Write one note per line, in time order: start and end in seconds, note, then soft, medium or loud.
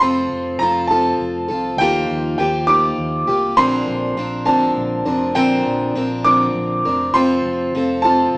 0.00 0.27 F1 medium
0.00 0.60 F3 medium
0.00 0.61 C4 medium
0.00 0.62 F4 loud
0.00 0.61 A4 medium
0.00 0.56 C6 loud
0.31 0.57 F1 medium
0.59 1.12 F1 medium
0.59 0.90 F3 medium
0.59 0.90 C4 medium
0.59 0.90 F4 medium
0.59 0.89 A4 medium
0.59 0.87 A#5 medium
0.87 1.50 C4 medium
0.87 1.49 F4 medium
0.87 1.47 A4 medium
0.87 1.81 A5 medium
0.92 1.80 F3 medium
1.20 1.46 F1 medium
1.48 1.79 C2 medium
1.48 1.80 C4 soft
1.48 1.80 F4 soft
1.48 1.79 A4 medium
1.78 2.05 D#2 medium
1.78 2.39 D#3 medium
1.78 2.38 F3 medium
1.78 2.39 A#3 loud
1.78 2.39 F4 loud
1.78 2.39 G4 loud
1.78 2.36 G5 loud
2.10 2.35 D#2 medium
2.38 2.90 D#2 medium
2.38 2.68 F3 medium
2.38 2.68 A#3 medium
2.38 2.67 F4 medium
2.38 2.67 G4 medium
2.38 2.66 G5 medium
2.67 3.29 D#3 medium
2.67 3.30 F3 medium
2.67 3.29 A#3 medium
2.67 3.28 F4 medium
2.67 3.26 G4 medium
2.67 3.60 D6 loud
2.98 3.24 D#2 loud
3.27 3.54 C2 loud
3.27 3.57 A#3 soft
3.27 3.58 F4 soft
3.27 3.57 G4 medium
3.57 3.83 A#1 medium
3.57 4.17 A#2 medium
3.57 4.17 D3 medium
3.57 4.17 F3 medium
3.57 4.17 C4 loud
3.57 4.17 D4 loud
3.57 4.18 A#4 loud
3.57 4.49 C6 loud
3.87 4.13 A#1 medium
4.17 4.68 A#1 medium
4.17 4.46 F3 medium
4.17 4.46 C4 medium
4.17 4.45 D4 medium
4.17 4.44 A#4 medium
4.45 5.07 A#2 medium
4.45 5.07 D3 medium
4.45 5.07 F3 medium
4.45 5.06 C4 medium
4.45 5.05 D4 medium
4.45 5.04 A#4 medium
4.45 5.38 A5 medium
4.76 5.02 A#1 medium
5.05 5.32 F1 medium
5.05 5.34 F3 soft
5.05 5.35 C4 medium
5.05 5.35 D4 medium
5.05 5.36 A#4 medium
5.35 5.61 A#1 medium
5.35 5.95 A#2 medium
5.35 5.95 D3 medium
5.35 5.95 F3 loud
5.35 5.96 C4 loud
5.35 5.96 D4 loud
5.35 5.96 A#4 loud
5.35 6.28 G5 loud
5.66 5.92 A#1 medium
5.95 6.47 A#1 medium
5.95 6.24 F3 medium
5.95 6.24 C4 medium
5.95 6.24 D4 medium
5.95 6.23 A#4 medium
6.25 6.85 A#2 medium
6.25 6.85 D3 medium
6.25 6.87 F3 medium
6.25 6.85 C4 medium
6.25 6.85 D4 medium
6.25 6.84 A#4 medium
6.25 7.17 D6 loud
6.55 6.81 A#1 medium
6.85 7.11 F1 medium
6.85 7.13 F3 soft
6.85 7.14 C4 soft
6.85 7.15 D4 soft
6.85 7.15 A#4 medium
7.14 7.40 F1 medium
7.14 7.74 F3 medium
7.14 7.74 C4 medium
7.14 7.76 F4 medium
7.14 7.75 A4 loud
7.14 8.06 C6 loud
7.44 7.70 F1 medium
7.74 8.26 F1 loud
7.74 8.04 F3 medium
7.74 8.04 C4 medium
7.74 8.04 F4 medium
7.74 8.03 A4 medium
8.02 8.38 F3 medium
8.02 8.38 C4 medium
8.02 8.38 F4 medium
8.02 8.38 A4 medium
8.02 8.38 A5 loud
8.34 8.38 F1 loud